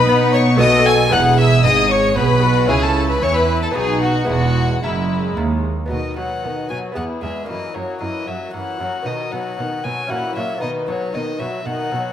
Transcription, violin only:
Already playing: B4
0.34 C#5
0.60 D#5
0.86 G#5
1.12 F#5
1.38 E5
1.64 D#5
1.91 C#5
2.17 B4
2.69 G#4
2.82 A4
3.09 B4
3.23 C#5
3.36 B4
3.63 A4
3.76 G#4
4.03 F#4
4.30 F#4
4.84 E4
5.91 D#5
6.17 F#5
6.70 G#5
6.96 F#5
7.23 E5
7.49 D#5
7.74 C#5
8.02 D#5
8.28 E5
8.54 F#5
9.06 D#5
9.31 F#5
9.84 G#5
10.10 F#5
10.36 E5
10.62 D#5
10.88 C#5
11.14 D#5
11.39 E5
11.66 F#5

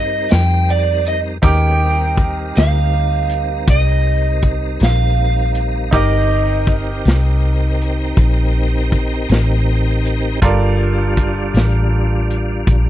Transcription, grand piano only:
Already playing: D#4 G4 A#4 D6
1.42 D#4 G4 A#4 D6
5.91 D#4 G4 A#4 D6
10.42 F4 A4 A#4 D5

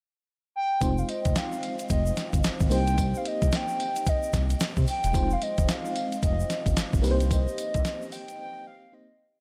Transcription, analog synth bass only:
0.82 F1
1.26 F1
1.90 F1
2.33 G1
2.44 G#1
2.61 G#1
2.71 C2
3.42 C2
4.34 C2
4.77 C3
5.04 E1
5.15 F1
5.58 F1
6.23 F1
6.66 G1
6.77 G#1
6.94 G#1
7.04 C2
7.75 C2

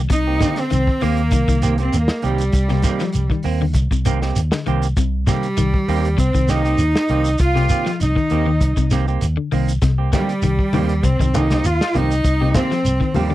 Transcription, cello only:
0.12 D#4
0.60 C4
1.04 A#3
1.82 C4
1.97 A#3
2.27 G3
5.29 G3
6.21 C4
6.50 D#4
7.42 F4
8.03 D#4
10.16 G3
11.05 C4
11.35 D#4
11.66 F4
11.96 D#4
12.56 C4
13.16 G3

